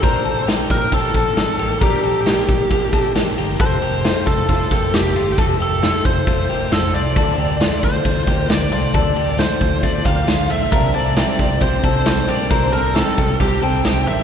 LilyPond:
<<
  \new Staff \with { instrumentName = "Lead electric guitar" } { \time 4/4 \key f \major \tempo 4 = 135 c''4 r8 bes'8 a'2 | g'2. r4 | c''4. a'8 a'4 g'4 | a'8 a'4 c''4. a'8 d''8~ |
d''4. c''4. d''8 d''8~ | d''4 c''4 d''8 f''4 e''8~ | e''8 d''8 d''4 c''4 c''8 d''8 | c''8 bes'8 a'4 g'8 g''4 e''8 | }
  \new Staff \with { instrumentName = "Clean electric guitar" } { \time 4/4 \key f \major <d' bes'>8 <c' a'>8 <bes g'>4 <bes g'>8 <c' a'>4 <bes g'>8 | <d' bes'>8 <c' a'>8 <bes g'>4 <bes g'>8 <c' a'>8 <bes g'>8 <bes g'>8 | <c' a'>8 <bes g'>8 <a f'>4 <a f'>8 <bes g'>4 <a f'>8 | <c' a'>8 <bes g'>8 <a f'>4 <a f'>8 <bes g'>8 <a f'>8 <a f'>8 |
<d' a'>8 <bes g'>8 <a f'>4 <a f'>8 <bes g'>4 <a f'>8 | <d' a'>8 <bes g'>8 <a f'>4 <a f'>8 <bes g'>8 <a f'>8 <a f'>8 | <d' bes'>8 <c' a'>8 <c' g'>4 <c' g'>8 <c' a'>4 <bes g'>8 | <d' bes'>8 <c' a'>8 <c' g'>4 <c' g'>8 <c' a'>8 <c' g'>8 <bes g'>8 | }
  \new Staff \with { instrumentName = "Steel-string acoustic guitar" } { \time 4/4 \key f \major r1 | r1 | r1 | r1 |
r1 | r1 | <c g c' d' c''>8 <c' d' c''>8 <c g c' d' c''>8 <c' d' c''>8 <g c' d' c''>8 <c' d' c''>8 <c g c' d' c''>8 <c' d' c''>8 | <c g c' d' c''>8 <c' d' c''>8 <c g c' d' c''>8 <c' d' c''>8 <g c' d' c''>8 <c' d' c''>8 <c g c' d' c''>8 <c' d' c''>8 | }
  \new Staff \with { instrumentName = "Fingered electric bass" } { \clef bass \time 4/4 \key f \major bes,,8 bes,,8. r16 bes,,8 bes,,8 bes,,8 bes,,8 a,,8 | bes,,8 bes,,8. r16 bes,,8 bes,,8 bes,,8 bes,,8 g,,8 | f,,8 f,,8. r16 f,,8 f,,8 f,,8 f,,8 g,,8 | f,,8 f,,8. r16 f,,8 f,,8 f,,8 f,,8 c,8 |
d,8 d,8. r16 d,8 d,8 d,8 d,8 c,8 | d,8 d,8. r16 d,8 d,8 d,8 d,8 bes,,8 | c,8 c,8. r16 c,8 c,8 c,8 c,8 bes,,8 | c,8 c,8. r16 c,8 c,8 c,8 c,8 a,,8 | }
  \new DrumStaff \with { instrumentName = "Drums" } \drummode { \time 4/4 <bd cymr>8 cymr8 <cymr sn>8 <bd cymr sn>8 <bd cymr>8 <bd cymr>8 <cymr sn>8 cymr8 | <bd cymr>8 cymr8 <cymr sn>8 <bd cymr>8 <bd cymr>8 <bd cymr>8 <cymr sn>8 <hho cymr>8 | <hhp bd cymr>8 cymr8 <cymr sn>8 <bd cymr sn>8 <bd cymr>8 <bd cymr>8 <cymr sn>8 cymr8 | <bd cymr>8 cymr8 <cymr sn>8 <bd cymr>8 <bd cymr>8 cymr8 <cymr sn>8 cymr8 |
<bd cymr>8 cymr8 <cymr sn>8 <bd cymr>8 <bd cymr>8 <bd cymr>8 <cymr sn>8 cymr8 | <bd cymr>8 cymr8 <cymr sn>8 <bd cymr>8 <bd cymr>8 <bd cymr>8 <cymr sn>8 <hho cymr>8 | <hhp bd cymr>8 cymr8 <cymr sn>8 <bd cymr sn>8 <bd cymr>8 <bd cymr>8 <cymr sn>8 cymr8 | <bd cymr>8 cymr8 <cymr sn>8 <bd cymr>8 <bd cymr>8 cymr8 <cymr sn>8 cymr8 | }
>>